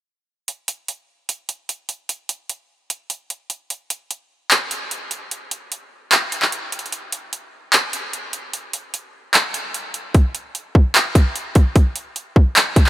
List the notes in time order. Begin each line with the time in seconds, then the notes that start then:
0.48 closed hi-hat
0.68 closed hi-hat
0.88 closed hi-hat
1.29 closed hi-hat
1.49 closed hi-hat
1.69 closed hi-hat
1.89 closed hi-hat
2.09 closed hi-hat
2.29 closed hi-hat
2.49 closed hi-hat
2.90 closed hi-hat
3.10 closed hi-hat
3.30 closed hi-hat
3.50 closed hi-hat
3.70 closed hi-hat
3.90 closed hi-hat
4.11 closed hi-hat
4.51 clap, closed hi-hat
4.71 closed hi-hat
4.91 closed hi-hat
5.11 closed hi-hat
5.31 closed hi-hat
5.51 closed hi-hat
5.72 closed hi-hat
6.12 clap, closed hi-hat
6.32 closed hi-hat
6.42 clap
6.52 closed hi-hat
6.72 closed hi-hat
6.79 closed hi-hat
6.86 closed hi-hat
6.92 closed hi-hat
7.12 closed hi-hat
7.33 closed hi-hat
7.73 clap, closed hi-hat
7.93 closed hi-hat
8.13 closed hi-hat
8.33 closed hi-hat
8.53 closed hi-hat
8.73 closed hi-hat
8.94 closed hi-hat
9.34 clap, closed hi-hat
9.54 closed hi-hat
9.74 closed hi-hat
9.94 closed hi-hat
10.14 kick, closed hi-hat
10.35 closed hi-hat
10.55 closed hi-hat
10.75 kick
10.95 clap, closed hi-hat
11.15 kick, closed hi-hat
11.36 closed hi-hat
11.55 kick, closed hi-hat
11.76 kick, closed hi-hat
11.96 closed hi-hat
12.16 closed hi-hat
12.36 kick
12.56 clap, closed hi-hat
12.76 kick, closed hi-hat
12.86 clap